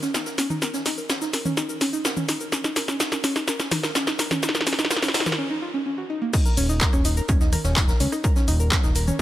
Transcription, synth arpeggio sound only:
0.03 C#4
0.14 D#4
0.26 A#4
0.38 C#4
0.50 D#4
0.62 A#4
0.74 C#4
0.86 D#4
0.98 A#4
1.10 C#4
1.22 D#4
1.33 A#4
1.46 C#4
1.57 D#4
1.69 A#4
1.81 C#4
1.93 D#4
2.05 A#4
2.17 C#4
2.29 D#4
2.41 A#4
2.52 C#4
2.64 D#4
2.76 A#4
2.88 C#4
3.00 D#4
3.12 A#4
3.24 C#4
3.36 D#4
3.48 A#4
3.60 C#4
3.72 D#4
3.83 A#4
3.95 C#4
4.07 D#4
4.19 A#4
4.31 C#4
4.43 D#4
4.55 A#4
4.67 C#4
4.79 D#4
4.91 A#4
5.03 C#4
5.14 D#4
5.26 A#4
5.38 C#4
5.50 D#4
5.62 F4
5.74 C#4
5.86 C#4
5.98 F#4
6.10 D#4
6.22 A#3
6.33 D#4 D#5
6.45 A#4 A#5
6.57 C#4 C#5
6.69 D#4 D#5
6.81 A#4 A#5
6.93 C#4 C#5
7.05 D#4 D#5
7.17 A#4 A#5
7.29 C#4 C#5
7.41 D#4 D#5
7.53 A#4 A#5
7.65 C#4 C#5
7.76 D#4 D#5
7.88 A#4 A#5
8.00 C#4 C#5
8.12 D#4 D#5
8.24 A#4 A#5
8.36 C#4 C#5
8.48 D#4 D#5
8.60 A#4 A#5
8.72 C#4 C#5
8.84 D#4 D#5
8.96 A#4 A#5
9.07 C#4 C#5

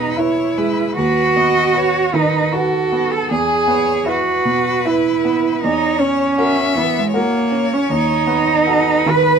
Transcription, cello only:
Already playing: D#4
0.16 E4
0.95 F#4
2.14 D#4
2.52 F#4
3.12 A4
3.30 G#4
4.07 F#4
4.85 E4
5.62 D#4
6.00 C#4
6.77 B3
6.98 G#3
7.15 A#3
7.73 C#4
7.93 D#4
9.09 B4

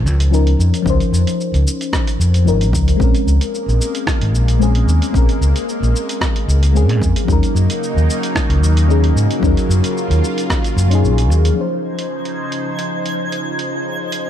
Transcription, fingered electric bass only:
0.06 C#2
0.59 F2
0.86 C#2
1.13 F2
1.54 C#2
2.20 F2
2.46 G#1
2.73 C#2
3.00 A#1
3.27 C#2
3.68 A#1
4.22 G#1
4.34 A#1
4.87 D#2
5.14 A#1
5.41 C#2
5.82 A#1
6.48 C#2
6.89 A#2
7.02 F2
7.28 D#2
7.55 F#2
7.96 D#2
8.50 C#2
8.62 D#2
9.15 G#2
9.43 D#2
9.69 F#2
10.10 D#2
10.76 F#2
11.03 A#1
11.30 D#2

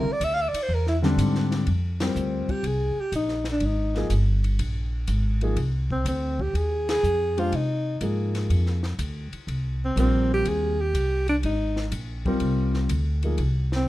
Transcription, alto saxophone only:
0.00 A#4
0.12 D5
0.25 E5
0.34 F5
0.41 E5
0.49 D5
0.63 C5
0.75 A#4
0.89 E4
2.03 C4
2.51 G4
2.67 G#4
3.01 G4
3.16 D#4
3.52 D4
3.66 D#4
5.92 C4
6.09 C4
6.42 G4
6.57 G#4
6.90 G#4
7.39 F4
7.55 D#4
9.85 C4
10.00 C4
10.34 G4
10.48 G#4
10.81 G4
11.29 D4
11.46 D#4
13.76 C4

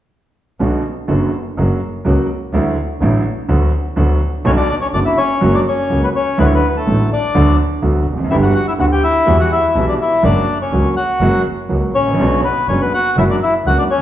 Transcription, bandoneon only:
4.46 C#4 C#5
4.57 D4 D5
4.69 D4 D5
4.81 C#4 C#5
4.94 D4 D5
5.05 E4 E5
5.17 C#4 C#5
5.54 D4 D5
5.68 C#4 C#5
6.04 B3 B4
6.16 C#4 C#5
6.40 B3 B4
6.46 C#5
6.55 B3 B4
6.69 B4
6.77 A3 A4
7.12 D4 D5
8.30 E4 E5
8.43 F#4 F#5
8.54 F#4 F#5
8.68 E4 E5
8.80 F#4 F#5
8.92 G4 G5
9.04 E4 E5
9.40 F#4 F#5
9.52 E4 E5
9.89 D4 D5
10.01 E4 E5
10.24 D4 D5
10.62 C#4 C#5
10.97 F#4 F#5
11.95 C#4 C#5
12.44 B3 B4
12.68 C#4 C#5
12.81 B3 B4
12.94 F#4 F#5
13.18 E4 E5
13.30 D4 D5
13.43 E4 E5
13.67 F#4 F#5
13.78 D4 D5
13.90 C#4 C#5

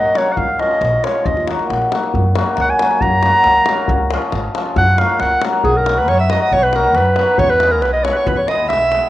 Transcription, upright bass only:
0.37 C#2
0.81 A#1
1.26 D#2
1.70 A#1
2.15 F#2
2.58 C#2
3.02 F#2
3.46 C#2
3.89 C#2
4.33 G#1
4.76 F#2
5.20 C#2
5.64 B1
6.09 F#2
6.52 B1
6.96 F#2
7.39 E2
7.83 B1
8.27 E2
8.71 B1

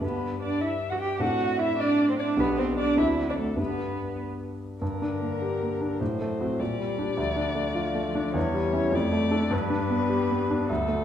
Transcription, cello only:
0.03 B3
0.41 D4
0.61 E4
0.92 F#4
1.01 G4
1.15 G4
1.21 F#4
1.59 E4
1.79 D4
2.10 C4
2.20 D4
2.40 B3
2.59 C4
2.79 D4
2.98 E4
3.29 D4
3.38 A3
3.60 B3
4.81 D3
5.98 F#3
6.57 G3
7.18 F3
8.34 G3
8.91 A3
9.52 G3
10.68 F#3

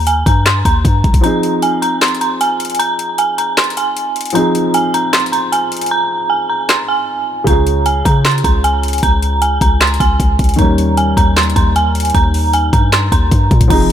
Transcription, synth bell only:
0.07 G#5
0.26 A#5
0.46 C6
0.65 A#5
1.24 A#5
1.63 G#5
1.82 A#5
2.02 C6
2.21 A#5
2.41 G#5
2.79 A#5
3.18 G#5
3.38 A#5
3.58 C6
3.77 G#5
4.35 A#5
4.74 G#5
4.94 A#5
5.13 C6
5.32 A#5
5.52 G#5
5.91 A#5
6.30 G#5
6.49 A#5
6.69 C6
6.88 G#5
7.47 A#5
7.86 G#5
8.05 A#5
8.25 C6
8.44 A#5
8.64 G#5
9.03 A#5
9.42 G#5
9.62 A#5
9.81 C6
10.00 G#5
10.59 A#5
10.97 G#5
11.17 A#5
11.37 C6
11.56 A#5
11.76 G#5
12.15 A#5
12.54 G#5
12.73 A#5
12.93 C6
13.12 A#5
13.70 A#5

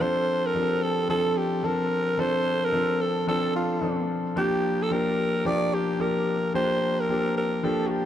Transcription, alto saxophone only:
0.01 C5
0.46 A#4
0.83 A4
1.10 A4
1.38 G4
1.65 A#4
2.20 C5
2.65 A#4
3.01 A4
3.29 A4
3.56 F4
4.38 G4
4.83 A4
4.92 A#4
5.47 D5
5.74 G4
6.01 A#4
6.55 C5
7.00 A#4
7.37 A#4
7.64 A4
7.87 F#4
7.91 G4

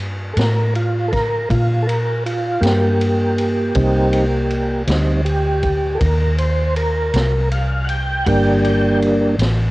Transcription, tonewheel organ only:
0.33 A4 A#4
0.76 F4
1.08 A4
1.13 A#4
1.50 F4
1.82 A4
1.87 A#4
2.26 F4
2.61 A#3 G4
3.75 G3 C4 D#4
4.87 G3 C4 D#4
5.25 G4
5.95 A4
5.99 A#4
6.39 C5
6.77 A#4
7.51 F5
7.85 F#5
7.89 G5
8.25 G3 A#3 D4 F#5 G5

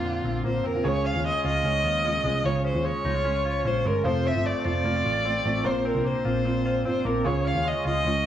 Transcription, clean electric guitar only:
Already playing: A#2 A#3 C4 F4
0.05 D3
0.25 C4
0.44 A#3
0.64 C4
0.84 C#3
1.04 C#4
1.24 G#3
1.45 F4
1.65 C#4
1.85 F4
2.05 C#4
2.25 G#3
2.44 C#3
2.65 C#4
2.85 G#3
3.05 D#4
3.14 F4
3.25 C#4
3.45 F4
3.65 C#4
3.85 G#3
4.05 F3
4.25 C4
4.45 A3
4.65 F4
4.85 A#3
4.95 C4
5.05 F4
5.25 C4
5.46 A3
5.65 A#2
5.85 C4
6.05 A#3
6.25 F4
6.45 C4
6.66 F4
6.85 C4
7.05 A#3
7.25 C#3
7.45 C#4
7.65 G#3
7.85 F4
8.05 C#4

